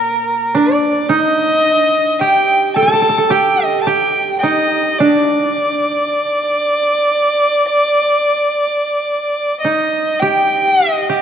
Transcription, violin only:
0, 0, Header, 1, 2, 480
1, 0, Start_track
1, 0, Tempo, 1104972
1, 481, Time_signature, 4, 2, 24, 8
1, 1444, Tempo, 1129944
1, 2884, Tempo, 1169591
1, 4733, End_track
2, 0, Start_track
2, 0, Title_t, "Violin"
2, 0, Program_c, 0, 40
2, 0, Note_on_c, 0, 70, 71
2, 246, Note_on_c, 0, 74, 68
2, 253, Note_off_c, 0, 70, 0
2, 479, Note_off_c, 0, 74, 0
2, 481, Note_on_c, 0, 75, 87
2, 945, Note_off_c, 0, 75, 0
2, 963, Note_on_c, 0, 79, 81
2, 1186, Note_off_c, 0, 79, 0
2, 1199, Note_on_c, 0, 81, 80
2, 1440, Note_on_c, 0, 79, 68
2, 1447, Note_off_c, 0, 81, 0
2, 1585, Note_off_c, 0, 79, 0
2, 1585, Note_on_c, 0, 75, 68
2, 1650, Note_off_c, 0, 75, 0
2, 1652, Note_on_c, 0, 81, 56
2, 1678, Note_on_c, 0, 79, 75
2, 1685, Note_off_c, 0, 81, 0
2, 1891, Note_off_c, 0, 79, 0
2, 1894, Note_on_c, 0, 79, 50
2, 1903, Note_on_c, 0, 75, 72
2, 1910, Note_off_c, 0, 79, 0
2, 2151, Note_on_c, 0, 74, 81
2, 2157, Note_off_c, 0, 75, 0
2, 4066, Note_off_c, 0, 74, 0
2, 4068, Note_on_c, 0, 75, 62
2, 4312, Note_on_c, 0, 79, 78
2, 4318, Note_off_c, 0, 75, 0
2, 4620, Note_off_c, 0, 79, 0
2, 4620, Note_on_c, 0, 75, 78
2, 4733, Note_off_c, 0, 75, 0
2, 4733, End_track
0, 0, End_of_file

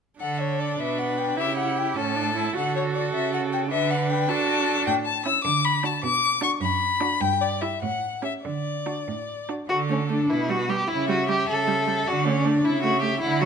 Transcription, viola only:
0, 0, Header, 1, 2, 480
1, 0, Start_track
1, 0, Key_signature, 2, "major"
1, 0, Tempo, 388853
1, 252, Time_signature, 6, 3, 24, 8
1, 8405, Tempo, 404040
1, 9845, Tempo, 419874
1, 11765, Tempo, 398406
1, 13685, Tempo, 387097
1, 16362, End_track
2, 0, Start_track
2, 0, Title_t, "Viola"
2, 0, Program_c, 0, 41
2, 242, Note_on_c, 0, 62, 33
2, 1689, Note_on_c, 0, 64, 35
2, 1708, Note_off_c, 0, 62, 0
2, 2417, Note_on_c, 0, 61, 39
2, 2435, Note_off_c, 0, 64, 0
2, 2661, Note_on_c, 0, 62, 39
2, 2680, Note_off_c, 0, 61, 0
2, 2898, Note_off_c, 0, 62, 0
2, 2905, Note_on_c, 0, 64, 38
2, 3141, Note_on_c, 0, 66, 36
2, 3159, Note_off_c, 0, 64, 0
2, 4562, Note_off_c, 0, 66, 0
2, 4570, Note_on_c, 0, 62, 37
2, 5292, Note_on_c, 0, 66, 44
2, 5311, Note_off_c, 0, 62, 0
2, 6015, Note_off_c, 0, 66, 0
2, 6490, Note_on_c, 0, 61, 44
2, 6670, Note_off_c, 0, 61, 0
2, 7203, Note_on_c, 0, 62, 48
2, 7384, Note_off_c, 0, 62, 0
2, 7923, Note_on_c, 0, 62, 50
2, 8100, Note_off_c, 0, 62, 0
2, 8637, Note_on_c, 0, 62, 48
2, 8817, Note_off_c, 0, 62, 0
2, 9365, Note_on_c, 0, 64, 44
2, 9540, Note_off_c, 0, 64, 0
2, 10080, Note_on_c, 0, 61, 33
2, 10261, Note_off_c, 0, 61, 0
2, 10808, Note_on_c, 0, 62, 36
2, 10986, Note_off_c, 0, 62, 0
2, 11523, Note_on_c, 0, 62, 36
2, 11701, Note_off_c, 0, 62, 0
2, 11994, Note_on_c, 0, 57, 39
2, 12073, Note_off_c, 0, 57, 0
2, 12240, Note_on_c, 0, 57, 36
2, 12318, Note_off_c, 0, 57, 0
2, 12716, Note_on_c, 0, 55, 38
2, 12794, Note_off_c, 0, 55, 0
2, 12959, Note_on_c, 0, 55, 37
2, 13036, Note_off_c, 0, 55, 0
2, 13436, Note_on_c, 0, 55, 41
2, 13515, Note_off_c, 0, 55, 0
2, 13674, Note_on_c, 0, 55, 34
2, 13754, Note_off_c, 0, 55, 0
2, 14154, Note_on_c, 0, 55, 40
2, 14234, Note_off_c, 0, 55, 0
2, 14399, Note_on_c, 0, 55, 34
2, 14478, Note_off_c, 0, 55, 0
2, 14876, Note_on_c, 0, 57, 42
2, 14956, Note_off_c, 0, 57, 0
2, 15115, Note_on_c, 0, 57, 35
2, 15194, Note_off_c, 0, 57, 0
2, 15593, Note_on_c, 0, 57, 43
2, 15672, Note_off_c, 0, 57, 0
2, 15822, Note_on_c, 0, 57, 36
2, 15903, Note_off_c, 0, 57, 0
2, 16313, Note_on_c, 0, 54, 45
2, 16362, Note_off_c, 0, 54, 0
2, 16362, End_track
0, 0, End_of_file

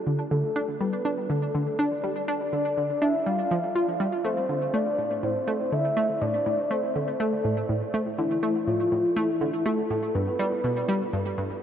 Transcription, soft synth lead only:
0, 0, Header, 1, 2, 480
1, 0, Start_track
1, 0, Key_signature, 0, "minor"
1, 0, Tempo, 491803
1, 305, Time_signature, 4, 2, 24, 8
1, 11350, End_track
2, 0, Start_track
2, 0, Title_t, "Soft synth lead"
2, 0, Program_c, 0, 80
2, 305, Note_on_c, 0, 69, 84
2, 783, Note_on_c, 0, 71, 90
2, 797, Note_off_c, 0, 69, 0
2, 1265, Note_on_c, 0, 69, 91
2, 1280, Note_off_c, 0, 71, 0
2, 1746, Note_on_c, 0, 74, 98
2, 1760, Note_off_c, 0, 69, 0
2, 2218, Note_off_c, 0, 74, 0
2, 2224, Note_on_c, 0, 74, 103
2, 2945, Note_on_c, 0, 76, 107
2, 2960, Note_off_c, 0, 74, 0
2, 3188, Note_on_c, 0, 77, 110
2, 3203, Note_off_c, 0, 76, 0
2, 3907, Note_off_c, 0, 77, 0
2, 4148, Note_on_c, 0, 72, 96
2, 4629, Note_on_c, 0, 74, 105
2, 4644, Note_off_c, 0, 72, 0
2, 5108, Note_on_c, 0, 72, 102
2, 5123, Note_off_c, 0, 74, 0
2, 5587, Note_on_c, 0, 76, 105
2, 5602, Note_off_c, 0, 72, 0
2, 6065, Note_on_c, 0, 74, 104
2, 6079, Note_off_c, 0, 76, 0
2, 6546, Note_on_c, 0, 72, 97
2, 6561, Note_off_c, 0, 74, 0
2, 7025, Note_on_c, 0, 69, 84
2, 7039, Note_off_c, 0, 72, 0
2, 7745, Note_off_c, 0, 69, 0
2, 7988, Note_on_c, 0, 64, 89
2, 8466, Note_on_c, 0, 65, 92
2, 8480, Note_off_c, 0, 64, 0
2, 8944, Note_on_c, 0, 64, 95
2, 8959, Note_off_c, 0, 65, 0
2, 9422, Note_on_c, 0, 69, 105
2, 9436, Note_off_c, 0, 64, 0
2, 9901, Note_on_c, 0, 71, 110
2, 9915, Note_off_c, 0, 69, 0
2, 11343, Note_off_c, 0, 71, 0
2, 11350, End_track
0, 0, End_of_file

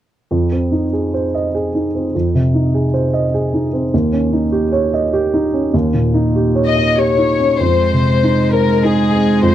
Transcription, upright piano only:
0, 0, Header, 1, 2, 480
1, 0, Start_track
1, 0, Key_signature, -4, "minor"
1, 0, Tempo, 603015
1, 250, Time_signature, 3, 2, 24, 8
1, 4564, Tempo, 623701
1, 6484, Tempo, 601805
1, 7536, End_track
2, 0, Start_track
2, 0, Title_t, "Upright piano"
2, 0, Program_c, 0, 0
2, 247, Note_on_c, 0, 41, 38
2, 379, Control_c, 0, 64, 127
2, 414, Note_on_c, 0, 60, 29
2, 571, Note_on_c, 0, 63, 30
2, 674, Note_off_c, 0, 60, 0
2, 739, Note_on_c, 0, 68, 35
2, 833, Note_off_c, 0, 63, 0
2, 907, Note_on_c, 0, 72, 37
2, 998, Note_off_c, 0, 68, 0
2, 1071, Note_on_c, 0, 75, 33
2, 1162, Note_off_c, 0, 72, 0
2, 1231, Note_on_c, 0, 68, 37
2, 1324, Note_off_c, 0, 75, 0
2, 1391, Note_on_c, 0, 63, 31
2, 1483, Note_off_c, 0, 68, 0
2, 1550, Note_on_c, 0, 60, 30
2, 1642, Note_off_c, 0, 63, 0
2, 1668, Note_off_c, 0, 41, 0
2, 1711, Note_on_c, 0, 41, 37
2, 1716, Control_c, 0, 64, 0
2, 1800, Note_off_c, 0, 60, 0
2, 1860, Control_c, 0, 64, 127
2, 1867, Note_on_c, 0, 48, 34
2, 2022, Note_on_c, 0, 63, 33
2, 2116, Note_off_c, 0, 48, 0
2, 2184, Note_on_c, 0, 68, 37
2, 2271, Note_off_c, 0, 63, 0
2, 2337, Note_on_c, 0, 72, 40
2, 2431, Note_off_c, 0, 68, 0
2, 2495, Note_on_c, 0, 75, 37
2, 2586, Note_off_c, 0, 72, 0
2, 2659, Note_on_c, 0, 68, 38
2, 2745, Note_off_c, 0, 75, 0
2, 2815, Note_on_c, 0, 63, 36
2, 2908, Note_off_c, 0, 68, 0
2, 2970, Note_on_c, 0, 60, 35
2, 3066, Note_off_c, 0, 63, 0
2, 3098, Note_off_c, 0, 41, 0
2, 3127, Note_off_c, 0, 60, 0
2, 3136, Note_on_c, 0, 39, 45
2, 3139, Control_c, 0, 64, 0
2, 3266, Control_c, 0, 64, 127
2, 3282, Note_on_c, 0, 61, 39
2, 3444, Note_on_c, 0, 63, 37
2, 3537, Note_off_c, 0, 61, 0
2, 3600, Note_on_c, 0, 67, 46
2, 3697, Note_off_c, 0, 63, 0
2, 3759, Note_on_c, 0, 73, 48
2, 3855, Note_off_c, 0, 67, 0
2, 3930, Note_on_c, 0, 75, 40
2, 4016, Note_off_c, 0, 73, 0
2, 4086, Note_on_c, 0, 67, 47
2, 4182, Note_off_c, 0, 75, 0
2, 4248, Note_on_c, 0, 63, 39
2, 4340, Note_off_c, 0, 67, 0
2, 4404, Note_on_c, 0, 61, 38
2, 4502, Note_off_c, 0, 63, 0
2, 4537, Note_off_c, 0, 39, 0
2, 4567, Note_on_c, 0, 39, 50
2, 4576, Control_c, 0, 64, 0
2, 4658, Note_off_c, 0, 61, 0
2, 4698, Control_c, 0, 64, 127
2, 4723, Note_on_c, 0, 46, 37
2, 4878, Note_on_c, 0, 63, 40
2, 4975, Note_off_c, 0, 46, 0
2, 5044, Note_on_c, 0, 67, 42
2, 5133, Note_off_c, 0, 63, 0
2, 5193, Note_on_c, 0, 73, 45
2, 5296, Note_off_c, 0, 67, 0
2, 5354, Note_on_c, 0, 75, 41
2, 5451, Note_off_c, 0, 73, 0
2, 5520, Note_on_c, 0, 67, 41
2, 5612, Note_off_c, 0, 75, 0
2, 5673, Note_on_c, 0, 63, 33
2, 5779, Note_off_c, 0, 67, 0
2, 5838, Note_on_c, 0, 61, 32
2, 5938, Note_off_c, 0, 63, 0
2, 5977, Note_off_c, 0, 39, 0
2, 6003, Note_off_c, 0, 61, 0
2, 6003, Note_on_c, 0, 41, 38
2, 6021, Control_c, 0, 64, 0
2, 6142, Control_c, 0, 64, 127
2, 6254, Note_on_c, 0, 48, 31
2, 6488, Note_on_c, 0, 63, 38
2, 6634, Note_off_c, 0, 48, 0
2, 6729, Note_on_c, 0, 72, 35
2, 6873, Note_off_c, 0, 63, 0
2, 6968, Note_on_c, 0, 63, 43
2, 7111, Note_off_c, 0, 72, 0
2, 7205, Note_on_c, 0, 60, 37
2, 7349, Note_off_c, 0, 63, 0
2, 7411, Note_off_c, 0, 41, 0
2, 7439, Note_on_c, 0, 41, 49
2, 7458, Control_c, 0, 64, 0
2, 7536, Note_off_c, 0, 41, 0
2, 7536, Note_off_c, 0, 60, 0
2, 7536, End_track
0, 0, End_of_file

